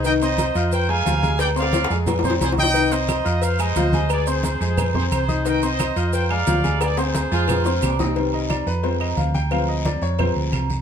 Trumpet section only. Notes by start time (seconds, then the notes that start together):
0.05 D#5 G5
0.23 C5 D#5
0.73 C5 G5
0.90 F5 G#5
1.40 D5 G5
1.58 D5 F5
2.25 G#4 C5
2.43 G#4 C5
2.58 D#5 G5
2.92 C5 D#5
3.43 C5 F5
3.60 C5 D#5
4.11 G#4 D5
4.28 G#4 C5
4.97 G#4 C5
5.14 G#4 C5
5.47 D#5 G5
5.63 C5 D#5
6.13 C5 G5
6.30 D5 F5
6.80 G#4 D5
6.98 G#4 C5